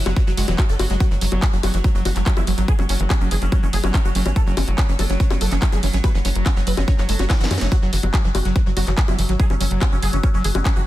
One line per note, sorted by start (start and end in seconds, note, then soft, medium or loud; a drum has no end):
0.00 7.71 F#3 medium
0.06 0.13 F#1 medium
0.06 0.10 F#3 medium
0.06 0.15 F#3 medium
0.06 closed hi-hat medium
0.06 high bongo medium
0.16 0.20 E3 medium
0.16 0.21 F#3 medium
0.16 kick loud
0.16 closed hi-hat medium
0.27 0.34 F#1 medium
0.27 0.31 F#3 medium
0.37 0.45 F#1 loud
0.37 0.46 G#3 medium
0.37 0.42 F#4 loud
0.37 open hi-hat loud
0.48 0.55 E1 medium
0.48 0.57 E3 medium
0.48 0.52 F#3 medium
0.48 closed hi-hat medium
0.48 high bongo soft
0.58 0.63 F#3 medium
0.58 0.64 F#4 loud
0.58 kick loud
0.58 clap loud
0.58 closed hi-hat medium
0.69 0.76 F#1 medium
0.69 0.73 A4 loud
0.79 0.87 F#1 loud
0.79 0.84 F#3 medium
0.79 0.85 F#4 medium
0.79 open hi-hat loud
0.79 high bongo medium
0.90 0.97 F#1 medium
0.90 0.94 F#3 medium
0.90 0.96 G#3 loud
0.90 closed hi-hat medium
1.00 1.09 F#3 medium
1.00 1.05 F#4 loud
1.00 kick loud
1.00 closed hi-hat medium
1.11 1.18 F#1 medium
1.11 1.15 E3 medium
1.11 1.15 F#3 medium
1.21 1.29 F#1 loud
1.21 1.26 F#3 medium
1.21 1.25 F#3 medium
1.21 open hi-hat loud
1.32 1.39 F#1 loud
1.32 1.41 F#3 medium
1.32 closed hi-hat medium
1.32 high bongo soft
1.42 1.46 E3 medium
1.42 1.47 F#3 medium
1.42 kick loud
1.42 clap loud
1.42 closed hi-hat medium
1.53 1.60 F#1 medium
1.53 1.57 F#3 medium
1.53 1.56 F#3 medium
1.63 1.71 F#1 loud
1.63 1.72 F#3 medium
1.63 1.68 F#4 medium
1.63 open hi-hat loud
1.63 high bongo medium
1.74 1.81 F#1 medium
1.74 1.77 E3 medium
1.74 1.78 F#3 medium
1.74 closed hi-hat medium
1.84 1.89 F#3 medium
1.84 1.88 F#3 medium
1.84 kick loud
1.84 closed hi-hat medium
1.95 2.02 F#1 medium
1.95 1.99 F#3 medium
1.95 2.04 F#3 medium
2.05 2.12 F#1 loud
2.05 2.09 E3 medium
2.05 2.10 F#4 loud
2.05 open hi-hat loud
2.05 high bongo soft
2.16 2.23 F#1 medium
2.16 2.20 F#3 medium
2.16 2.19 F#3 medium
2.16 clap soft
2.16 closed hi-hat medium
2.26 2.31 F#3 medium
2.26 2.35 F#3 medium
2.26 kick loud
2.26 clap loud
2.26 closed hi-hat medium
2.37 2.44 F#1 medium
2.37 2.40 E3 medium
2.37 2.41 E4 loud
2.37 high bongo medium
2.47 2.54 F#1 loud
2.47 2.51 F#3 medium
2.47 2.52 F#3 medium
2.47 open hi-hat loud
2.58 2.65 G#1 medium
2.58 2.67 F#3 medium
2.58 2.62 F#3 medium
2.58 closed hi-hat medium
2.68 2.72 E3 medium
2.68 2.73 G#4 loud
2.68 kick loud
2.68 closed hi-hat medium
2.79 2.86 F#1 medium
2.79 2.82 F#3 medium
2.79 2.83 C#4 medium
2.79 high bongo soft
2.89 2.96 F#1 loud
2.89 2.98 F#3 medium
2.89 2.94 C#4 medium
2.89 open hi-hat loud
3.00 3.07 F#1 loud
3.00 3.03 E3 medium
3.00 closed hi-hat medium
3.10 3.14 F#3 medium
3.10 3.14 C#4 medium
3.10 kick loud
3.10 clap loud
3.10 closed hi-hat medium
3.10 high bongo medium
3.21 3.28 F#1 medium
3.21 3.30 F#3 medium
3.21 3.25 C#4 medium
3.31 3.38 F#1 loud
3.31 3.35 E3 medium
3.31 3.35 G#4 loud
3.31 open hi-hat loud
3.42 3.49 F#1 loud
3.42 3.45 F#3 medium
3.42 3.46 C#4 medium
3.42 closed hi-hat medium
3.52 3.61 F#3 medium
3.52 3.56 C#4 medium
3.52 kick loud
3.52 closed hi-hat medium
3.52 high bongo soft
3.63 3.70 F#1 medium
3.63 3.66 E3 medium
3.63 3.67 C#4 medium
3.73 3.80 F#1 loud
3.73 3.77 F#3 medium
3.73 3.77 G#4 loud
3.73 open hi-hat loud
3.84 3.91 F#1 medium
3.84 3.93 F#3 medium
3.84 3.88 C#4 medium
3.84 closed hi-hat medium
3.84 high bongo medium
3.94 3.98 E3 medium
3.94 3.98 C#4 medium
3.94 kick loud
3.94 clap loud
3.94 closed hi-hat medium
4.05 4.12 F#1 medium
4.05 4.08 F#3 medium
4.05 4.09 F#4 loud
4.15 4.22 F#1 loud
4.15 4.24 F#3 medium
4.15 4.19 C#4 medium
4.15 open hi-hat loud
4.26 4.33 G#1 medium
4.26 4.29 E3 medium
4.26 4.30 C#4 medium
4.26 closed hi-hat medium
4.26 high bongo soft
4.36 4.40 F#3 medium
4.36 4.40 A4 loud
4.36 kick loud
4.36 closed hi-hat medium
4.47 4.54 F#1 medium
4.47 4.56 F#3 medium
4.47 4.51 C#4 medium
4.57 4.64 F#1 loud
4.57 4.61 E3 medium
4.57 4.61 C#4 medium
4.57 open hi-hat loud
4.57 high bongo medium
4.68 4.75 F#1 medium
4.68 4.71 F#3 medium
4.68 closed hi-hat medium
4.78 4.87 F#3 medium
4.78 4.82 C#4 medium
4.78 kick loud
4.78 clap loud
4.78 closed hi-hat medium
4.89 4.96 F#1 medium
4.89 4.92 E3 medium
4.89 4.93 C#4 medium
4.99 5.06 F#1 loud
4.99 5.03 F#3 medium
4.99 5.03 A4 loud
4.99 open hi-hat loud
4.99 high bongo soft
5.10 5.17 F#1 medium
5.10 5.19 F#3 medium
5.10 5.14 C#4 medium
5.10 closed hi-hat medium
5.20 5.24 E3 medium
5.20 5.24 C#4 medium
5.20 kick loud
5.20 closed hi-hat medium
5.30 5.38 F#1 medium
5.30 5.34 F#3 medium
5.30 5.35 C#4 medium
5.30 high bongo medium
5.41 5.48 F#1 loud
5.41 5.50 F#3 medium
5.41 5.45 A4 medium
5.41 open hi-hat loud
5.51 5.59 F#1 medium
5.51 5.55 E3 medium
5.51 5.56 C#4 medium
5.51 clap soft
5.51 closed hi-hat medium
5.62 5.66 F#3 medium
5.62 5.66 C#4 medium
5.62 kick loud
5.62 clap loud
5.62 closed hi-hat medium
5.72 5.80 F#1 medium
5.72 5.81 F#3 medium
5.72 5.77 G#4 loud
5.72 high bongo soft
5.83 5.90 F#1 loud
5.83 5.87 E3 medium
5.83 5.87 C#4 medium
5.83 open hi-hat loud
5.93 6.01 G#1 medium
5.93 5.97 F#3 medium
5.93 5.98 C#4 medium
5.93 closed hi-hat medium
6.04 6.13 F#3 medium
6.04 6.08 B4 loud
6.04 kick loud
6.04 closed hi-hat medium
6.04 high bongo medium
6.14 6.22 F#1 medium
6.14 6.18 E3 medium
6.14 6.19 C#4 medium
6.25 6.32 F#1 loud
6.25 6.29 F#3 medium
6.25 6.29 C#4 medium
6.25 open hi-hat loud
6.35 6.43 F#1 medium
6.35 6.44 F#3 medium
6.35 closed hi-hat medium
6.46 6.49 E3 medium
6.46 6.50 C#4 medium
6.46 kick loud
6.46 clap loud
6.46 closed hi-hat medium
6.46 high bongo soft
6.56 6.64 F#1 medium
6.56 6.60 F#3 medium
6.56 6.61 C#4 medium
6.67 6.74 F#1 loud
6.67 6.76 F#3 medium
6.67 6.71 B4 loud
6.67 open hi-hat loud
6.77 6.85 F#1 medium
6.77 6.81 E3 medium
6.77 6.82 C#4 medium
6.77 closed hi-hat medium
6.77 high bongo medium
6.88 6.91 F#3 medium
6.88 6.92 C#4 medium
6.88 kick loud
6.88 closed hi-hat medium
6.98 7.05 F#1 medium
6.98 7.07 F#3 medium
6.98 7.03 C#4 medium
6.98 clap soft
7.09 7.16 F#1 loud
7.09 7.15 G#3 medium
7.09 7.13 A4 loud
7.09 open hi-hat loud
7.19 7.26 F#1 medium
7.19 7.24 C#4 medium
7.19 7.25 F#4 medium
7.19 closed hi-hat medium
7.19 high bongo soft
7.30 7.34 C#4 medium
7.30 kick loud
7.30 snare medium
7.30 clap loud
7.30 closed hi-hat medium
7.40 7.47 F#1 medium
7.40 7.46 E3 medium
7.40 7.44 F#4 loud
7.40 snare medium
7.51 7.58 F#2 loud
7.51 7.54 E3 medium
7.51 7.55 C#4 medium
7.51 open hi-hat loud
7.51 high bongo medium
7.58 7.68 F#1 medium
7.58 7.67 A3 medium
7.58 7.65 C#4 medium
7.58 snare medium
7.58 closed hi-hat medium
7.72 7.75 F#3 medium
7.72 10.87 F#3 medium
7.72 7.76 F#4 loud
7.72 kick loud
7.72 closed hi-hat medium
7.82 7.89 F#1 medium
7.82 7.91 F#3 medium
7.82 7.86 F#3 medium
7.93 8.00 F#1 loud
7.93 7.96 E3 medium
7.93 7.97 F#3 medium
7.93 open hi-hat loud
8.03 8.10 F#1 loud
8.03 8.07 F#3 medium
8.03 closed hi-hat medium
8.03 high bongo soft
8.14 8.23 F#3 medium
8.14 8.18 F#3 medium
8.14 kick loud
8.14 clap loud
8.14 closed hi-hat medium
8.24 8.31 F#1 medium
8.24 8.28 E3 medium
8.24 8.28 F#3 medium
8.35 8.42 F#1 loud
8.35 8.38 F#3 medium
8.35 8.39 F#4 loud
8.35 open hi-hat loud
8.35 high bongo medium
8.45 8.52 F#1 loud
8.45 8.54 F#3 medium
8.45 8.49 F#3 medium
8.45 closed hi-hat medium
8.56 8.59 E3 medium
8.56 8.60 F#3 medium
8.56 kick loud
8.56 closed hi-hat medium
8.66 8.73 F#1 medium
8.66 8.70 F#3 medium
8.77 8.84 F#1 loud
8.77 8.86 F#3 medium
8.77 8.81 F#4 loud
8.77 open hi-hat loud
8.77 high bongo soft
8.87 8.94 F#1 medium
8.87 8.91 E3 medium
8.87 8.91 F#3 medium
8.87 clap soft
8.87 closed hi-hat medium
8.98 9.01 F#3 medium
8.98 9.02 F#3 medium
8.98 kick loud
8.98 clap loud
8.98 closed hi-hat medium
9.08 9.15 F#1 medium
9.08 9.17 F#3 medium
9.08 9.12 E4 loud
9.08 high bongo medium
9.19 9.26 F#1 loud
9.19 9.22 E3 medium
9.19 9.23 F#3 medium
9.19 open hi-hat loud
9.29 9.36 G#1 medium
9.29 9.33 F#3 medium
9.29 closed hi-hat medium
9.40 9.49 F#3 medium
9.40 9.44 G#4 loud
9.40 kick loud
9.40 closed hi-hat medium
9.50 9.57 F#1 medium
9.50 9.54 E3 medium
9.50 9.54 C#4 medium
9.50 high bongo soft
9.61 9.68 F#1 loud
9.61 9.64 F#3 medium
9.61 9.65 C#4 medium
9.61 open hi-hat loud
9.71 9.78 F#1 loud
9.71 9.80 F#3 medium
9.71 closed hi-hat medium
9.82 9.85 E3 medium
9.82 9.86 C#4 medium
9.82 kick loud
9.82 clap loud
9.82 closed hi-hat medium
9.82 high bongo medium
9.92 9.99 F#1 medium
9.92 9.96 F#3 medium
9.92 9.96 C#4 medium
10.02 10.10 F#1 loud
10.02 10.11 F#3 medium
10.02 10.07 G#4 loud
10.02 open hi-hat loud
10.13 10.20 F#1 loud
10.13 10.17 E3 medium
10.13 10.17 C#4 medium
10.13 closed hi-hat medium
10.23 10.27 F#3 medium
10.23 10.28 C#4 medium
10.23 kick loud
10.23 closed hi-hat medium
10.23 high bongo soft
10.34 10.41 F#1 medium
10.34 10.43 F#3 medium
10.34 10.38 C#4 medium
10.44 10.52 F#1 loud
10.44 10.48 E3 medium
10.44 10.49 G#4 loud
10.44 open hi-hat loud
10.55 10.62 F#1 loud
10.55 10.59 F#3 medium
10.55 10.59 C#4 medium
10.55 closed hi-hat medium
10.55 high bongo medium
10.65 10.74 F#3 medium
10.65 10.70 C#4 medium
10.65 kick loud
10.65 clap loud
10.65 closed hi-hat medium
10.76 10.83 F#1 medium
10.76 10.80 E3 medium
10.76 10.80 F#4 loud